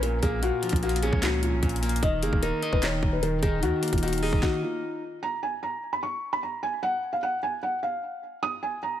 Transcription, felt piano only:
0.03 A#4
0.23 G#4
0.42 F#4
0.72 F4
0.83 F#4
1.03 G#4
1.23 F#4
1.43 F4
2.03 D#5
2.23 G#4
2.43 A#4
2.73 B4
2.83 C#5
3.13 B4
3.23 A#4
3.42 G#4
3.63 F#4
3.93 F4
4.03 F#4
4.23 G#4
4.43 F#4
4.63 F4
5.23 A#5
5.43 G#5
5.63 A#5
5.93 B5
6.03 C#6
6.33 B5
6.43 A#5
6.63 G#5
6.83 F#5
7.13 F5
7.23 F#5
7.43 G#5
7.63 F#5
7.83 F5
8.43 D#6
8.63 G#5
8.83 A#5

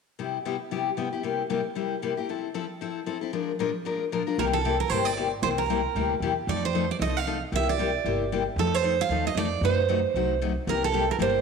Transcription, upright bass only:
4.38 C2
4.90 G1
5.42 C2
5.95 D2
6.20 E2
6.47 F2
7.00 C2
7.52 C2
8.04 G1
8.56 F2
9.09 D#2
9.35 F2
9.61 F#2
10.14 C2
10.67 C2
11.19 G1

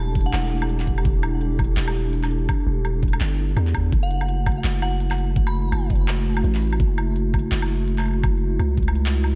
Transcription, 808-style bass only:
Already playing: E1
0.33 E1
1.05 E1
1.77 E1
2.67 E1
3.21 G1
3.57 E2
3.92 F#1
4.64 F#1
5.72 F#1
6.44 A1
6.80 F#1
7.52 F#1
8.60 C#2

